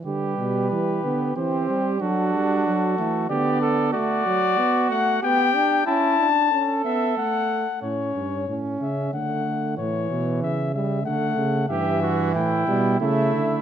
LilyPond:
<<
  \new Staff \with { instrumentName = "Cornet" } { \time 3/4 \key g \major \tempo 4 = 93 b'2 c''4 | a'4 a'4 d''4 | d''4. fis''8 g''4 | a''4. e''8 fis''4 |
cis''4. e''8 fis''4 | cis''4 e''8 e''8 fis''4 | \key e \dorian e''4 g''4 e''4 | }
  \new Staff \with { instrumentName = "Flugelhorn" } { \time 3/4 \key g \major g'4 g'4 g'4 | fis'2 g'8 a'8 | fis'2 g'4 | e'8 r8 a'2 |
r2. | r2. | \key e \dorian g'8 fis'8 e'4 e'4 | }
  \new Staff \with { instrumentName = "Trombone" } { \time 3/4 \key g \major g4. b8 c'4 | d'4. a8 b4 | a8 fis8 b8 a8 b8 d'8 | cis'8 d'8 cis'8 b8 a4 |
cis'4 cis'4 a4 | e4. g8 a4 | \key e \dorian e4. g8 a4 | }
  \new Staff \with { instrumentName = "Bass trombone" } { \clef bass \time 3/4 \key g \major d8 b,8 e8 d8 e8 g8 | fis8 g8 fis8 e8 d4 | r2. | r2. |
a,8 g,8 a,8 cis8 d4 | a,8 b,8 cis4 d8 cis8 | \key e \dorian g,4 a,8 b,8 cis8 d8 | }
>>